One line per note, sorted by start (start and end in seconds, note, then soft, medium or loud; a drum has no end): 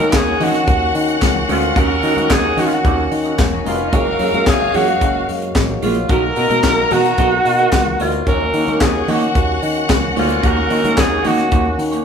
0.00 0.14 D#3 medium
0.00 3.89 D#3 medium
0.00 12.05 A#3 medium
0.00 3.89 C#4 medium
0.00 0.12 C#4 medium
0.00 3.43 F#4 loud
0.00 3.89 F#4 medium
0.00 0.12 F#4 soft
0.00 0.18 A#4 loud
0.00 0.11 A#4 medium
0.00 0.11 D#5 medium
0.00 3.43 F#5 loud
0.00 closed hi-hat soft
0.00 high conga medium
0.13 0.34 D#2 medium
0.13 0.45 G#4 loud
0.13 muted clean electric guitar stroke soft
0.13 kick loud
0.13 snare loud
0.13 clap loud
0.13 closed hi-hat medium
0.13 tambourine medium
0.13 muted conga soft
0.27 muted clean electric guitar stroke soft
0.27 muted conga soft
0.40 0.62 D#3 medium
0.40 0.55 C#4 medium
0.40 0.54 F#4 medium
0.40 0.96 F#4 medium
0.40 0.53 A#4 medium
0.40 0.53 D#5 medium
0.40 open hi-hat medium
0.40 high conga medium
0.40 low conga medium
0.54 muted clean electric guitar stroke soft
0.54 snare soft
0.54 closed hi-hat soft
0.67 0.89 D#2 loud
0.67 muted clean electric guitar stroke soft
0.67 kick loud
0.67 closed hi-hat medium
0.67 muted conga soft
0.82 muted clean electric guitar stroke medium
0.95 1.16 D#3 loud
0.95 open hi-hat medium
1.08 muted clean electric guitar stroke soft
1.08 closed hi-hat medium
1.21 1.43 C#2 medium
1.21 muted clean electric guitar stroke soft
1.21 kick loud
1.21 snare medium
1.21 clap medium
1.21 closed hi-hat medium
1.21 tambourine medium
1.21 muted conga soft
1.21 high conga medium
1.35 muted clean electric guitar stroke soft
1.35 low conga medium
1.48 1.70 D2 loud
1.48 1.63 C#4 medium
1.48 1.80 F4 medium
1.48 1.62 F#4 medium
1.48 1.62 A#4 loud
1.48 1.61 D#5 loud
1.48 open hi-hat medium
1.48 high conga medium
1.62 muted clean electric guitar stroke soft
1.62 closed hi-hat soft
1.76 1.97 D#2 loud
1.76 1.91 C#4 loud
1.76 1.89 F#4 loud
1.76 1.89 A#4 medium
1.76 2.34 A#4 loud
1.76 1.88 D#5 medium
1.76 kick loud
1.76 closed hi-hat medium
1.90 muted clean electric guitar stroke soft
1.90 muted conga soft
2.03 2.14 D#3 loud
2.03 2.15 C#4 medium
2.03 2.15 F#4 medium
2.03 2.15 A#4 medium
2.03 2.15 D#5 medium
2.03 open hi-hat medium
2.16 2.32 D#3 medium
2.16 2.29 C#4 medium
2.16 2.28 F#4 medium
2.16 2.28 A#4 medium
2.16 2.28 D#5 medium
2.16 closed hi-hat medium
2.16 high conga medium
2.30 2.51 D#2 medium
2.30 2.61 G#4 loud
2.30 muted clean electric guitar stroke medium
2.30 kick loud
2.30 snare loud
2.30 clap loud
2.30 closed hi-hat medium
2.30 tambourine medium
2.30 muted conga soft
2.43 muted clean electric guitar stroke medium
2.43 muted conga soft
2.56 2.78 D#3 loud
2.56 2.72 C#4 medium
2.56 2.70 F#4 loud
2.56 2.68 F#4 medium
2.56 2.70 A#4 loud
2.56 2.69 D#5 loud
2.56 open hi-hat medium
2.56 high conga medium
2.56 low conga medium
2.66 2.75 F4 medium
2.71 3.13 F#4 medium
2.71 muted clean electric guitar stroke medium
2.71 snare soft
2.71 closed hi-hat soft
2.84 3.06 D#2 loud
2.84 3.04 C#4 medium
2.84 2.98 F#4 medium
2.84 2.97 A#4 loud
2.84 2.97 D#5 medium
2.84 kick loud
2.84 closed hi-hat medium
2.84 muted conga soft
2.97 muted clean electric guitar stroke soft
2.97 muted conga soft
3.11 3.33 D#3 medium
3.11 muted clean electric guitar stroke soft
3.11 open hi-hat medium
3.24 3.37 C#4 medium
3.24 3.37 F#4 medium
3.24 3.37 A#4 medium
3.24 3.36 D#5 medium
3.24 closed hi-hat soft
3.38 3.60 E1 medium
3.38 muted clean electric guitar stroke medium
3.38 kick loud
3.38 snare medium
3.38 clap medium
3.38 closed hi-hat medium
3.38 tambourine medium
3.38 high conga medium
3.51 3.59 F#3 medium
3.51 3.59 F#4 medium
3.51 muted clean electric guitar stroke soft
3.51 muted conga soft
3.51 low conga medium
3.59 3.66 G#3 medium
3.59 3.66 G#4 medium
3.65 3.87 F1 medium
3.65 3.73 A#3 medium
3.65 3.80 C#4 medium
3.65 3.97 F4 medium
3.65 3.78 F#4 loud
3.65 3.72 A#4 medium
3.65 3.77 A#4 loud
3.65 3.77 D#5 loud
3.65 open hi-hat medium
3.65 high conga medium
3.72 3.79 B3 medium
3.72 3.79 B4 medium
3.78 3.86 C#4 medium
3.78 3.86 C#5 medium
3.78 muted clean electric guitar stroke soft
3.78 closed hi-hat soft
3.85 3.92 D#4 medium
3.85 3.93 D#5 medium
3.92 4.14 F#1 loud
3.92 6.07 F#3 medium
3.92 6.07 G#3 medium
3.92 4.07 A#3 medium
3.92 4.05 F4 loud
3.92 5.78 F#4 loud
3.92 6.07 F#4 medium
3.92 4.05 G#4 medium
3.92 4.51 A#4 loud
3.92 4.04 C#5 loud
3.92 5.78 F5 loud
3.92 kick loud
3.92 closed hi-hat medium
4.06 muted clean electric guitar stroke medium
4.06 muted conga soft
4.19 4.30 F#2 medium
4.19 4.31 A#3 medium
4.19 4.31 F4 medium
4.19 4.32 G#4 medium
4.19 4.32 C#5 medium
4.19 open hi-hat medium
4.33 4.48 F#2 medium
4.33 4.45 A#3 soft
4.33 4.45 F4 medium
4.33 4.45 G#4 medium
4.33 4.45 C#5 medium
4.33 closed hi-hat medium
4.33 high conga medium
4.46 4.68 F#1 medium
4.46 4.77 G#4 loud
4.46 muted clean electric guitar stroke soft
4.46 kick loud
4.46 snare loud
4.46 clap medium
4.46 closed hi-hat medium
4.46 tambourine medium
4.60 muted clean electric guitar stroke soft
4.73 4.95 F#2 medium
4.73 4.88 A#3 medium
4.73 4.87 F4 loud
4.73 5.29 F#4 medium
4.73 4.87 G#4 loud
4.73 4.86 C#5 loud
4.73 open hi-hat medium
4.73 high conga medium
4.73 low conga medium
4.88 muted clean electric guitar stroke soft
4.88 closed hi-hat soft
5.01 5.22 F#1 loud
5.01 muted clean electric guitar stroke soft
5.01 kick loud
5.01 closed hi-hat medium
5.14 muted clean electric guitar stroke soft
5.14 muted conga soft
5.28 5.49 F#2 medium
5.28 open hi-hat medium
5.42 muted clean electric guitar stroke soft
5.42 closed hi-hat soft
5.55 5.77 A1 medium
5.55 muted clean electric guitar stroke soft
5.55 kick loud
5.55 snare medium
5.55 clap medium
5.55 closed hi-hat medium
5.55 tambourine medium
5.55 muted conga soft
5.55 high conga medium
5.69 muted clean electric guitar stroke soft
5.69 muted conga soft
5.69 low conga medium
5.82 6.04 A#1 medium
5.82 5.97 A#3 medium
5.82 5.96 F4 medium
5.82 6.12 F4 medium
5.82 5.95 G#4 medium
5.82 5.95 C#5 medium
5.82 open hi-hat medium
5.82 high conga medium
5.95 muted clean electric guitar stroke soft
5.95 closed hi-hat medium
6.08 6.31 B1 loud
6.08 8.24 D#3 medium
6.08 6.24 B3 medium
6.08 8.24 B3 medium
6.08 6.23 F#4 medium
6.08 12.05 F#4 medium
6.08 6.22 A#4 medium
6.08 7.96 A#4 loud
6.08 6.94 A#4 loud
6.08 6.21 D#5 loud
6.08 7.96 A#5 loud
6.08 kick loud
6.08 closed hi-hat medium
6.08 muted conga soft
6.23 muted clean electric guitar stroke soft
6.36 6.47 B2 loud
6.36 6.48 B3 medium
6.36 6.48 F#4 medium
6.36 6.49 A#4 medium
6.36 6.49 D#5 medium
6.36 open hi-hat medium
6.50 6.61 B2 medium
6.50 6.62 B3 medium
6.50 6.62 F#4 medium
6.50 6.62 A#4 medium
6.50 6.62 D#5 medium
6.50 closed hi-hat medium
6.50 high conga medium
6.63 6.85 B1 loud
6.63 muted clean electric guitar stroke soft
6.63 kick loud
6.63 snare loud
6.63 clap loud
6.63 closed hi-hat medium
6.63 tambourine medium
6.78 muted clean electric guitar stroke soft
6.78 muted conga soft
6.91 7.12 B2 medium
6.91 7.06 B3 medium
6.91 7.05 F#4 medium
6.91 8.03 F#4 loud
6.91 7.04 A#4 medium
6.91 7.04 D#5 medium
6.91 open hi-hat medium
6.91 high conga medium
6.91 low conga medium
7.04 muted clean electric guitar stroke soft
7.04 snare soft
7.04 closed hi-hat soft
7.18 7.39 B1 loud
7.18 7.33 B3 medium
7.18 7.32 F#4 loud
7.18 7.31 A#4 loud
7.18 7.31 D#5 medium
7.18 kick loud
7.18 closed hi-hat medium
7.18 muted conga soft
7.31 muted clean electric guitar stroke soft
7.31 muted conga soft
7.45 7.66 B2 medium
7.45 muted clean electric guitar stroke soft
7.45 open hi-hat medium
7.59 7.71 B3 medium
7.59 7.71 F#4 medium
7.59 7.71 A#4 medium
7.59 7.71 D#5 medium
7.59 closed hi-hat soft
7.72 7.93 C#2 medium
7.72 muted clean electric guitar stroke soft
7.72 kick loud
7.72 snare loud
7.72 clap medium
7.72 closed hi-hat medium
7.72 tambourine loud
7.72 muted conga soft
7.72 high conga medium
7.86 muted clean electric guitar stroke soft
7.86 muted conga soft
7.86 low conga medium
8.00 8.21 D2 medium
8.00 8.14 B3 medium
8.00 8.28 F4 medium
8.00 8.14 F#4 medium
8.00 8.13 A#4 medium
8.00 8.13 D#5 medium
8.00 open hi-hat medium
8.00 high conga medium
8.12 muted clean electric guitar stroke soft
8.12 closed hi-hat soft
8.26 8.48 D#2 loud
8.26 12.05 D#3 medium
8.26 8.42 A#3 medium
8.26 12.05 C#4 medium
8.26 8.41 D#4 medium
8.26 12.04 F#4 loud
8.26 8.41 F#4 loud
8.26 8.84 A#4 loud
8.26 8.40 C#5 loud
8.26 12.04 F#5 loud
8.26 kick loud
8.26 closed hi-hat medium
8.41 muted clean electric guitar stroke medium
8.41 muted conga soft
8.54 8.64 D#3 medium
8.54 8.66 A#3 medium
8.54 8.66 D#4 medium
8.54 8.66 F#4 medium
8.54 8.66 C#5 medium
8.54 open hi-hat medium
8.67 8.82 D#3 medium
8.67 8.80 A#3 medium
8.67 8.80 D#4 medium
8.67 8.80 F#4 medium
8.67 8.79 C#5 medium
8.67 closed hi-hat medium
8.67 high conga medium
8.81 9.02 D#2 medium
8.81 9.12 G#4 loud
8.81 muted clean electric guitar stroke soft
8.81 kick loud
8.81 snare loud
8.81 clap loud
8.81 closed hi-hat medium
8.81 tambourine medium
8.95 muted clean electric guitar stroke soft
8.95 muted conga soft
9.08 9.29 D#3 medium
9.08 9.23 A#3 loud
9.08 9.22 D#4 loud
9.08 9.21 F#4 loud
9.08 9.64 F#4 medium
9.08 9.21 C#5 loud
9.08 open hi-hat medium
9.08 high conga medium
9.08 low conga medium
9.22 muted clean electric guitar stroke soft
9.22 closed hi-hat soft
9.35 9.56 D#2 loud
9.35 muted clean electric guitar stroke soft
9.35 kick loud
9.35 closed hi-hat medium
9.48 muted clean electric guitar stroke soft
9.48 muted conga soft
9.63 9.84 D#3 medium
9.63 open hi-hat medium
9.76 muted clean electric guitar stroke soft
9.76 closed hi-hat soft
9.89 10.11 C#2 loud
9.89 muted clean electric guitar stroke soft
9.89 kick loud
9.89 snare loud
9.89 clap medium
9.89 closed hi-hat medium
9.89 tambourine medium
9.89 high conga medium
10.03 muted clean electric guitar stroke soft
10.03 muted conga soft
10.03 low conga medium
10.16 10.38 D2 loud
10.16 10.31 A#3 medium
10.16 10.29 D#4 medium
10.16 10.48 F4 medium
10.16 10.29 F#4 medium
10.16 10.28 C#5 medium
10.16 open hi-hat medium
10.16 high conga medium
10.29 muted clean electric guitar stroke soft
10.29 closed hi-hat soft
10.42 10.65 D#2 loud
10.42 10.58 A#3 medium
10.42 10.56 D#4 medium
10.42 10.56 F#4 loud
10.42 10.55 C#5 loud
10.42 kick loud
10.42 closed hi-hat medium
10.46 11.01 A#4 loud
10.57 muted clean electric guitar stroke soft
10.57 muted conga soft
10.70 10.81 D#3 loud
10.70 10.82 A#3 medium
10.70 10.82 D#4 medium
10.70 10.82 F#4 medium
10.70 10.83 C#5 medium
10.70 open hi-hat medium
10.84 10.99 D#3 medium
10.84 10.96 A#3 soft
10.84 10.96 D#4 medium
10.84 10.96 F#4 medium
10.84 10.96 C#5 medium
10.84 closed hi-hat medium
10.84 high conga medium
10.97 11.19 D#2 loud
10.97 11.29 G#4 loud
10.97 muted clean electric guitar stroke soft
10.97 kick loud
10.97 snare loud
10.97 clap loud
10.97 closed hi-hat medium
10.97 tambourine medium
11.11 muted clean electric guitar stroke soft
11.24 11.46 D#3 medium
11.24 11.39 A#3 medium
11.24 11.38 D#4 loud
11.24 11.38 F#4 loud
11.24 11.80 F#4 loud
11.24 11.37 C#5 loud
11.24 open hi-hat medium
11.24 high conga medium
11.24 low conga medium
11.38 muted clean electric guitar stroke soft
11.38 snare soft
11.38 closed hi-hat soft
11.51 11.73 D#2 loud
11.51 11.66 A#3 medium
11.51 11.65 D#4 medium
11.51 11.64 F#4 medium
11.51 11.64 C#5 medium
11.51 kick loud
11.51 closed hi-hat medium
11.51 muted conga soft
11.65 muted clean electric guitar stroke medium
11.65 muted conga soft
11.78 12.00 D#3 medium
11.78 muted clean electric guitar stroke soft
11.78 open hi-hat medium
11.92 12.04 A#3 medium
11.92 12.04 D#4 medium
11.92 12.04 F#4 medium
11.92 12.04 C#5 medium
11.92 closed hi-hat medium